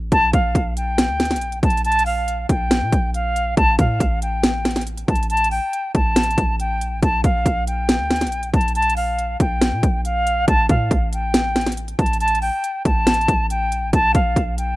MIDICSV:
0, 0, Header, 1, 4, 480
1, 0, Start_track
1, 0, Tempo, 431655
1, 132, Time_signature, 4, 2, 24, 8
1, 16415, End_track
2, 0, Start_track
2, 0, Title_t, "Flute"
2, 0, Program_c, 0, 73
2, 138, Note_on_c, 0, 81, 107
2, 339, Note_off_c, 0, 81, 0
2, 368, Note_on_c, 0, 77, 80
2, 821, Note_off_c, 0, 77, 0
2, 853, Note_on_c, 0, 79, 82
2, 1768, Note_off_c, 0, 79, 0
2, 1818, Note_on_c, 0, 81, 81
2, 2019, Note_off_c, 0, 81, 0
2, 2058, Note_on_c, 0, 81, 105
2, 2259, Note_off_c, 0, 81, 0
2, 2289, Note_on_c, 0, 77, 86
2, 2742, Note_off_c, 0, 77, 0
2, 2775, Note_on_c, 0, 79, 79
2, 3451, Note_off_c, 0, 79, 0
2, 3496, Note_on_c, 0, 77, 91
2, 3945, Note_off_c, 0, 77, 0
2, 3974, Note_on_c, 0, 81, 110
2, 4177, Note_off_c, 0, 81, 0
2, 4217, Note_on_c, 0, 77, 79
2, 4666, Note_off_c, 0, 77, 0
2, 4698, Note_on_c, 0, 79, 75
2, 5375, Note_off_c, 0, 79, 0
2, 5651, Note_on_c, 0, 81, 76
2, 5855, Note_off_c, 0, 81, 0
2, 5891, Note_on_c, 0, 81, 105
2, 6095, Note_off_c, 0, 81, 0
2, 6127, Note_on_c, 0, 79, 81
2, 6581, Note_off_c, 0, 79, 0
2, 6618, Note_on_c, 0, 81, 83
2, 7292, Note_off_c, 0, 81, 0
2, 7339, Note_on_c, 0, 79, 89
2, 7787, Note_off_c, 0, 79, 0
2, 7819, Note_on_c, 0, 81, 105
2, 8020, Note_off_c, 0, 81, 0
2, 8049, Note_on_c, 0, 77, 81
2, 8502, Note_off_c, 0, 77, 0
2, 8533, Note_on_c, 0, 79, 83
2, 9448, Note_off_c, 0, 79, 0
2, 9498, Note_on_c, 0, 81, 81
2, 9699, Note_off_c, 0, 81, 0
2, 9736, Note_on_c, 0, 81, 102
2, 9938, Note_off_c, 0, 81, 0
2, 9968, Note_on_c, 0, 77, 84
2, 10421, Note_off_c, 0, 77, 0
2, 10454, Note_on_c, 0, 79, 78
2, 11130, Note_off_c, 0, 79, 0
2, 11175, Note_on_c, 0, 77, 90
2, 11625, Note_off_c, 0, 77, 0
2, 11654, Note_on_c, 0, 81, 110
2, 11857, Note_off_c, 0, 81, 0
2, 11897, Note_on_c, 0, 77, 79
2, 12346, Note_off_c, 0, 77, 0
2, 12378, Note_on_c, 0, 79, 77
2, 13038, Note_off_c, 0, 79, 0
2, 13331, Note_on_c, 0, 81, 76
2, 13535, Note_off_c, 0, 81, 0
2, 13571, Note_on_c, 0, 81, 108
2, 13775, Note_off_c, 0, 81, 0
2, 13807, Note_on_c, 0, 79, 83
2, 14261, Note_off_c, 0, 79, 0
2, 14296, Note_on_c, 0, 81, 83
2, 14971, Note_off_c, 0, 81, 0
2, 15018, Note_on_c, 0, 79, 88
2, 15466, Note_off_c, 0, 79, 0
2, 15497, Note_on_c, 0, 81, 106
2, 15699, Note_off_c, 0, 81, 0
2, 15727, Note_on_c, 0, 77, 80
2, 16181, Note_off_c, 0, 77, 0
2, 16213, Note_on_c, 0, 79, 85
2, 16415, Note_off_c, 0, 79, 0
2, 16415, End_track
3, 0, Start_track
3, 0, Title_t, "808-style bass"
3, 0, Program_c, 1, 38
3, 13, Note_on_c, 1, 33, 101
3, 127, Note_off_c, 1, 33, 0
3, 132, Note_on_c, 1, 34, 114
3, 363, Note_off_c, 1, 34, 0
3, 372, Note_on_c, 1, 34, 102
3, 603, Note_off_c, 1, 34, 0
3, 611, Note_on_c, 1, 34, 104
3, 1212, Note_on_c, 1, 38, 97
3, 1229, Note_off_c, 1, 34, 0
3, 1513, Note_on_c, 1, 34, 99
3, 1529, Note_off_c, 1, 38, 0
3, 1798, Note_off_c, 1, 34, 0
3, 1812, Note_on_c, 1, 34, 104
3, 2734, Note_off_c, 1, 34, 0
3, 2773, Note_on_c, 1, 34, 110
3, 3133, Note_on_c, 1, 46, 102
3, 3149, Note_off_c, 1, 34, 0
3, 3246, Note_off_c, 1, 46, 0
3, 3252, Note_on_c, 1, 34, 107
3, 3943, Note_off_c, 1, 34, 0
3, 3973, Note_on_c, 1, 33, 113
3, 4203, Note_off_c, 1, 33, 0
3, 4212, Note_on_c, 1, 45, 104
3, 4443, Note_off_c, 1, 45, 0
3, 4451, Note_on_c, 1, 33, 107
3, 5607, Note_off_c, 1, 33, 0
3, 5652, Note_on_c, 1, 33, 104
3, 6228, Note_off_c, 1, 33, 0
3, 6613, Note_on_c, 1, 33, 108
3, 7073, Note_off_c, 1, 33, 0
3, 7092, Note_on_c, 1, 33, 108
3, 7572, Note_on_c, 1, 34, 98
3, 7589, Note_off_c, 1, 33, 0
3, 7692, Note_on_c, 1, 33, 99
3, 7709, Note_off_c, 1, 34, 0
3, 7806, Note_off_c, 1, 33, 0
3, 7812, Note_on_c, 1, 34, 115
3, 8043, Note_off_c, 1, 34, 0
3, 8052, Note_on_c, 1, 34, 103
3, 8283, Note_off_c, 1, 34, 0
3, 8292, Note_on_c, 1, 34, 108
3, 8892, Note_on_c, 1, 38, 97
3, 8909, Note_off_c, 1, 34, 0
3, 9192, Note_on_c, 1, 34, 98
3, 9209, Note_off_c, 1, 38, 0
3, 9477, Note_off_c, 1, 34, 0
3, 9492, Note_on_c, 1, 34, 104
3, 10414, Note_off_c, 1, 34, 0
3, 10453, Note_on_c, 1, 34, 111
3, 10813, Note_on_c, 1, 46, 100
3, 10829, Note_off_c, 1, 34, 0
3, 10926, Note_off_c, 1, 46, 0
3, 10932, Note_on_c, 1, 34, 106
3, 11623, Note_off_c, 1, 34, 0
3, 11652, Note_on_c, 1, 33, 115
3, 11882, Note_off_c, 1, 33, 0
3, 11892, Note_on_c, 1, 45, 104
3, 12123, Note_off_c, 1, 45, 0
3, 12131, Note_on_c, 1, 33, 104
3, 13287, Note_off_c, 1, 33, 0
3, 13331, Note_on_c, 1, 33, 105
3, 13908, Note_off_c, 1, 33, 0
3, 14292, Note_on_c, 1, 33, 106
3, 14753, Note_off_c, 1, 33, 0
3, 14771, Note_on_c, 1, 33, 108
3, 15253, Note_on_c, 1, 34, 99
3, 15269, Note_off_c, 1, 33, 0
3, 15372, Note_on_c, 1, 33, 99
3, 15389, Note_off_c, 1, 34, 0
3, 15486, Note_off_c, 1, 33, 0
3, 15492, Note_on_c, 1, 34, 116
3, 15723, Note_off_c, 1, 34, 0
3, 15732, Note_on_c, 1, 34, 105
3, 15963, Note_off_c, 1, 34, 0
3, 15971, Note_on_c, 1, 34, 106
3, 16415, Note_off_c, 1, 34, 0
3, 16415, End_track
4, 0, Start_track
4, 0, Title_t, "Drums"
4, 132, Note_on_c, 9, 36, 110
4, 132, Note_on_c, 9, 42, 77
4, 243, Note_off_c, 9, 36, 0
4, 243, Note_off_c, 9, 42, 0
4, 371, Note_on_c, 9, 42, 72
4, 372, Note_on_c, 9, 36, 95
4, 482, Note_off_c, 9, 42, 0
4, 483, Note_off_c, 9, 36, 0
4, 612, Note_on_c, 9, 36, 93
4, 615, Note_on_c, 9, 42, 83
4, 723, Note_off_c, 9, 36, 0
4, 726, Note_off_c, 9, 42, 0
4, 854, Note_on_c, 9, 42, 81
4, 965, Note_off_c, 9, 42, 0
4, 1092, Note_on_c, 9, 38, 121
4, 1094, Note_on_c, 9, 42, 89
4, 1203, Note_off_c, 9, 38, 0
4, 1206, Note_off_c, 9, 42, 0
4, 1333, Note_on_c, 9, 38, 91
4, 1333, Note_on_c, 9, 42, 43
4, 1393, Note_off_c, 9, 42, 0
4, 1393, Note_on_c, 9, 42, 53
4, 1444, Note_off_c, 9, 38, 0
4, 1452, Note_on_c, 9, 38, 68
4, 1453, Note_off_c, 9, 42, 0
4, 1453, Note_on_c, 9, 42, 64
4, 1513, Note_off_c, 9, 42, 0
4, 1513, Note_on_c, 9, 42, 74
4, 1564, Note_off_c, 9, 38, 0
4, 1572, Note_off_c, 9, 42, 0
4, 1572, Note_on_c, 9, 42, 65
4, 1684, Note_off_c, 9, 42, 0
4, 1693, Note_on_c, 9, 42, 63
4, 1804, Note_off_c, 9, 42, 0
4, 1812, Note_on_c, 9, 36, 94
4, 1813, Note_on_c, 9, 42, 53
4, 1893, Note_off_c, 9, 42, 0
4, 1893, Note_on_c, 9, 42, 59
4, 1923, Note_off_c, 9, 36, 0
4, 1972, Note_off_c, 9, 42, 0
4, 1972, Note_on_c, 9, 42, 63
4, 2052, Note_off_c, 9, 42, 0
4, 2052, Note_on_c, 9, 42, 68
4, 2132, Note_off_c, 9, 42, 0
4, 2132, Note_on_c, 9, 42, 76
4, 2212, Note_off_c, 9, 42, 0
4, 2212, Note_on_c, 9, 42, 78
4, 2291, Note_on_c, 9, 46, 72
4, 2323, Note_off_c, 9, 42, 0
4, 2402, Note_off_c, 9, 46, 0
4, 2534, Note_on_c, 9, 42, 81
4, 2646, Note_off_c, 9, 42, 0
4, 2773, Note_on_c, 9, 36, 99
4, 2773, Note_on_c, 9, 42, 79
4, 2884, Note_off_c, 9, 36, 0
4, 2884, Note_off_c, 9, 42, 0
4, 3012, Note_on_c, 9, 38, 123
4, 3014, Note_on_c, 9, 42, 84
4, 3123, Note_off_c, 9, 38, 0
4, 3125, Note_off_c, 9, 42, 0
4, 3252, Note_on_c, 9, 36, 88
4, 3253, Note_on_c, 9, 42, 77
4, 3363, Note_off_c, 9, 36, 0
4, 3364, Note_off_c, 9, 42, 0
4, 3496, Note_on_c, 9, 42, 78
4, 3607, Note_off_c, 9, 42, 0
4, 3737, Note_on_c, 9, 42, 81
4, 3849, Note_off_c, 9, 42, 0
4, 3972, Note_on_c, 9, 42, 79
4, 3973, Note_on_c, 9, 36, 116
4, 4083, Note_off_c, 9, 42, 0
4, 4084, Note_off_c, 9, 36, 0
4, 4211, Note_on_c, 9, 42, 72
4, 4212, Note_on_c, 9, 36, 89
4, 4322, Note_off_c, 9, 42, 0
4, 4324, Note_off_c, 9, 36, 0
4, 4452, Note_on_c, 9, 36, 91
4, 4454, Note_on_c, 9, 42, 82
4, 4563, Note_off_c, 9, 36, 0
4, 4566, Note_off_c, 9, 42, 0
4, 4693, Note_on_c, 9, 42, 83
4, 4805, Note_off_c, 9, 42, 0
4, 4931, Note_on_c, 9, 38, 124
4, 4934, Note_on_c, 9, 42, 84
4, 5043, Note_off_c, 9, 38, 0
4, 5045, Note_off_c, 9, 42, 0
4, 5172, Note_on_c, 9, 38, 90
4, 5173, Note_on_c, 9, 42, 44
4, 5233, Note_off_c, 9, 42, 0
4, 5233, Note_on_c, 9, 42, 54
4, 5284, Note_off_c, 9, 38, 0
4, 5292, Note_on_c, 9, 38, 67
4, 5293, Note_off_c, 9, 42, 0
4, 5293, Note_on_c, 9, 42, 64
4, 5352, Note_off_c, 9, 42, 0
4, 5352, Note_on_c, 9, 42, 73
4, 5403, Note_off_c, 9, 38, 0
4, 5412, Note_off_c, 9, 42, 0
4, 5412, Note_on_c, 9, 42, 66
4, 5523, Note_off_c, 9, 42, 0
4, 5532, Note_on_c, 9, 42, 66
4, 5643, Note_off_c, 9, 42, 0
4, 5651, Note_on_c, 9, 36, 95
4, 5652, Note_on_c, 9, 42, 52
4, 5732, Note_off_c, 9, 42, 0
4, 5732, Note_on_c, 9, 42, 58
4, 5763, Note_off_c, 9, 36, 0
4, 5813, Note_off_c, 9, 42, 0
4, 5813, Note_on_c, 9, 42, 63
4, 5892, Note_off_c, 9, 42, 0
4, 5892, Note_on_c, 9, 42, 72
4, 5972, Note_off_c, 9, 42, 0
4, 5972, Note_on_c, 9, 42, 75
4, 6052, Note_off_c, 9, 42, 0
4, 6052, Note_on_c, 9, 42, 79
4, 6130, Note_on_c, 9, 46, 71
4, 6163, Note_off_c, 9, 42, 0
4, 6241, Note_off_c, 9, 46, 0
4, 6374, Note_on_c, 9, 42, 79
4, 6485, Note_off_c, 9, 42, 0
4, 6613, Note_on_c, 9, 36, 104
4, 6613, Note_on_c, 9, 42, 82
4, 6724, Note_off_c, 9, 36, 0
4, 6724, Note_off_c, 9, 42, 0
4, 6851, Note_on_c, 9, 38, 124
4, 6851, Note_on_c, 9, 42, 90
4, 6931, Note_off_c, 9, 42, 0
4, 6931, Note_on_c, 9, 42, 70
4, 6962, Note_off_c, 9, 38, 0
4, 7012, Note_off_c, 9, 42, 0
4, 7012, Note_on_c, 9, 42, 50
4, 7092, Note_off_c, 9, 42, 0
4, 7092, Note_on_c, 9, 36, 90
4, 7092, Note_on_c, 9, 42, 78
4, 7203, Note_off_c, 9, 36, 0
4, 7203, Note_off_c, 9, 42, 0
4, 7335, Note_on_c, 9, 42, 78
4, 7447, Note_off_c, 9, 42, 0
4, 7576, Note_on_c, 9, 42, 85
4, 7688, Note_off_c, 9, 42, 0
4, 7812, Note_on_c, 9, 36, 110
4, 7812, Note_on_c, 9, 42, 78
4, 7923, Note_off_c, 9, 42, 0
4, 7924, Note_off_c, 9, 36, 0
4, 8051, Note_on_c, 9, 42, 73
4, 8052, Note_on_c, 9, 36, 92
4, 8162, Note_off_c, 9, 42, 0
4, 8163, Note_off_c, 9, 36, 0
4, 8292, Note_on_c, 9, 36, 91
4, 8294, Note_on_c, 9, 42, 83
4, 8403, Note_off_c, 9, 36, 0
4, 8406, Note_off_c, 9, 42, 0
4, 8533, Note_on_c, 9, 42, 82
4, 8645, Note_off_c, 9, 42, 0
4, 8772, Note_on_c, 9, 38, 123
4, 8774, Note_on_c, 9, 42, 84
4, 8883, Note_off_c, 9, 38, 0
4, 8885, Note_off_c, 9, 42, 0
4, 9013, Note_on_c, 9, 38, 91
4, 9013, Note_on_c, 9, 42, 44
4, 9073, Note_off_c, 9, 42, 0
4, 9073, Note_on_c, 9, 42, 53
4, 9124, Note_off_c, 9, 38, 0
4, 9132, Note_off_c, 9, 42, 0
4, 9132, Note_on_c, 9, 38, 68
4, 9132, Note_on_c, 9, 42, 66
4, 9193, Note_off_c, 9, 42, 0
4, 9193, Note_on_c, 9, 42, 74
4, 9243, Note_off_c, 9, 38, 0
4, 9253, Note_off_c, 9, 42, 0
4, 9253, Note_on_c, 9, 42, 65
4, 9364, Note_off_c, 9, 42, 0
4, 9373, Note_on_c, 9, 42, 62
4, 9484, Note_off_c, 9, 42, 0
4, 9491, Note_on_c, 9, 36, 95
4, 9492, Note_on_c, 9, 42, 51
4, 9572, Note_off_c, 9, 42, 0
4, 9572, Note_on_c, 9, 42, 58
4, 9603, Note_off_c, 9, 36, 0
4, 9652, Note_off_c, 9, 42, 0
4, 9652, Note_on_c, 9, 42, 65
4, 9732, Note_off_c, 9, 42, 0
4, 9732, Note_on_c, 9, 42, 67
4, 9812, Note_off_c, 9, 42, 0
4, 9812, Note_on_c, 9, 42, 77
4, 9892, Note_off_c, 9, 42, 0
4, 9892, Note_on_c, 9, 42, 76
4, 9971, Note_on_c, 9, 46, 71
4, 10003, Note_off_c, 9, 42, 0
4, 10082, Note_off_c, 9, 46, 0
4, 10214, Note_on_c, 9, 42, 78
4, 10325, Note_off_c, 9, 42, 0
4, 10453, Note_on_c, 9, 36, 103
4, 10453, Note_on_c, 9, 42, 80
4, 10564, Note_off_c, 9, 36, 0
4, 10565, Note_off_c, 9, 42, 0
4, 10691, Note_on_c, 9, 38, 123
4, 10694, Note_on_c, 9, 42, 82
4, 10803, Note_off_c, 9, 38, 0
4, 10805, Note_off_c, 9, 42, 0
4, 10932, Note_on_c, 9, 36, 89
4, 10933, Note_on_c, 9, 42, 77
4, 11043, Note_off_c, 9, 36, 0
4, 11044, Note_off_c, 9, 42, 0
4, 11175, Note_on_c, 9, 42, 77
4, 11286, Note_off_c, 9, 42, 0
4, 11417, Note_on_c, 9, 42, 83
4, 11528, Note_off_c, 9, 42, 0
4, 11651, Note_on_c, 9, 42, 79
4, 11652, Note_on_c, 9, 36, 116
4, 11763, Note_off_c, 9, 36, 0
4, 11763, Note_off_c, 9, 42, 0
4, 11890, Note_on_c, 9, 42, 73
4, 11892, Note_on_c, 9, 36, 94
4, 12001, Note_off_c, 9, 42, 0
4, 12003, Note_off_c, 9, 36, 0
4, 12131, Note_on_c, 9, 36, 93
4, 12134, Note_on_c, 9, 42, 79
4, 12242, Note_off_c, 9, 36, 0
4, 12245, Note_off_c, 9, 42, 0
4, 12373, Note_on_c, 9, 42, 82
4, 12484, Note_off_c, 9, 42, 0
4, 12611, Note_on_c, 9, 38, 122
4, 12613, Note_on_c, 9, 42, 86
4, 12722, Note_off_c, 9, 38, 0
4, 12724, Note_off_c, 9, 42, 0
4, 12852, Note_on_c, 9, 38, 90
4, 12852, Note_on_c, 9, 42, 43
4, 12911, Note_off_c, 9, 42, 0
4, 12911, Note_on_c, 9, 42, 53
4, 12963, Note_off_c, 9, 38, 0
4, 12971, Note_off_c, 9, 42, 0
4, 12971, Note_on_c, 9, 38, 69
4, 12971, Note_on_c, 9, 42, 63
4, 13031, Note_off_c, 9, 42, 0
4, 13031, Note_on_c, 9, 42, 73
4, 13082, Note_off_c, 9, 38, 0
4, 13091, Note_off_c, 9, 42, 0
4, 13091, Note_on_c, 9, 42, 64
4, 13202, Note_off_c, 9, 42, 0
4, 13211, Note_on_c, 9, 42, 65
4, 13323, Note_off_c, 9, 42, 0
4, 13331, Note_on_c, 9, 36, 97
4, 13332, Note_on_c, 9, 42, 51
4, 13412, Note_off_c, 9, 42, 0
4, 13412, Note_on_c, 9, 42, 61
4, 13442, Note_off_c, 9, 36, 0
4, 13492, Note_off_c, 9, 42, 0
4, 13492, Note_on_c, 9, 42, 65
4, 13572, Note_off_c, 9, 42, 0
4, 13572, Note_on_c, 9, 42, 68
4, 13652, Note_off_c, 9, 42, 0
4, 13652, Note_on_c, 9, 42, 76
4, 13732, Note_off_c, 9, 42, 0
4, 13732, Note_on_c, 9, 42, 77
4, 13810, Note_on_c, 9, 46, 69
4, 13843, Note_off_c, 9, 42, 0
4, 13921, Note_off_c, 9, 46, 0
4, 14054, Note_on_c, 9, 42, 83
4, 14165, Note_off_c, 9, 42, 0
4, 14292, Note_on_c, 9, 36, 104
4, 14292, Note_on_c, 9, 42, 81
4, 14403, Note_off_c, 9, 36, 0
4, 14404, Note_off_c, 9, 42, 0
4, 14531, Note_on_c, 9, 38, 127
4, 14531, Note_on_c, 9, 42, 88
4, 14611, Note_off_c, 9, 42, 0
4, 14611, Note_on_c, 9, 42, 69
4, 14642, Note_off_c, 9, 38, 0
4, 14692, Note_off_c, 9, 42, 0
4, 14692, Note_on_c, 9, 42, 50
4, 14772, Note_off_c, 9, 42, 0
4, 14772, Note_on_c, 9, 36, 91
4, 14772, Note_on_c, 9, 42, 76
4, 14883, Note_off_c, 9, 36, 0
4, 14884, Note_off_c, 9, 42, 0
4, 15015, Note_on_c, 9, 42, 76
4, 15126, Note_off_c, 9, 42, 0
4, 15256, Note_on_c, 9, 42, 85
4, 15367, Note_off_c, 9, 42, 0
4, 15492, Note_on_c, 9, 36, 110
4, 15492, Note_on_c, 9, 42, 83
4, 15603, Note_off_c, 9, 36, 0
4, 15603, Note_off_c, 9, 42, 0
4, 15730, Note_on_c, 9, 42, 71
4, 15732, Note_on_c, 9, 36, 91
4, 15842, Note_off_c, 9, 42, 0
4, 15843, Note_off_c, 9, 36, 0
4, 15971, Note_on_c, 9, 36, 89
4, 15975, Note_on_c, 9, 42, 85
4, 16083, Note_off_c, 9, 36, 0
4, 16086, Note_off_c, 9, 42, 0
4, 16214, Note_on_c, 9, 42, 83
4, 16325, Note_off_c, 9, 42, 0
4, 16415, End_track
0, 0, End_of_file